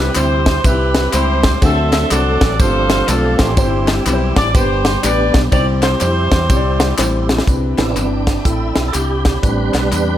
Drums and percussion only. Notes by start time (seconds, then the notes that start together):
0.15 clap, ride, tambourine
0.46 kick, snare, ride, tambourine
0.64 kick, ride, tambourine
0.95 snare, ride, tambourine
1.13 clap, ride, tambourine
1.43 kick, snare, ride, tambourine
1.62 kick, ride, tambourine
1.92 snare, clap, ride, tambourine
2.11 clap, ride, tambourine
2.41 kick, snare, ride, tambourine
2.60 kick, ride, tambourine
2.90 snare, ride, tambourine
3.08 clap, ride, tambourine
3.39 kick, snare, ride, tambourine
3.57 kick, ride, tambourine
3.87 snare, clap, ride, tambourine
4.06 clap, ride, tambourine
4.36 kick, snare, ride, tambourine
4.55 kick, ride, tambourine
4.85 snare, ride, tambourine
5.03 clap, ride, tambourine
5.34 kick, snare, ride, tambourine
5.52 kick, ride, tambourine
5.82 snare, clap, ride, tambourine
6.01 clap, ride, tambourine
6.31 kick, snare, ride, tambourine
6.50 kick, ride, tambourine
6.80 snare, ride, tambourine
6.98 snare, clap, tambourine
7.29 snare, tambourine
7.38 snare
7.47 kick, closed hi-hat, tambourine
7.78 snare, clap, closed hi-hat, tambourine
7.97 clap, closed hi-hat, tambourine
8.27 kick, snare, closed hi-hat, tambourine
8.45 kick, closed hi-hat, tambourine
8.76 snare, closed hi-hat, tambourine
8.94 clap, closed hi-hat, tambourine
9.25 kick, snare, closed hi-hat, tambourine
9.43 kick, closed hi-hat, tambourine
9.74 snare, clap, closed hi-hat, tambourine
9.92 clap, closed hi-hat, tambourine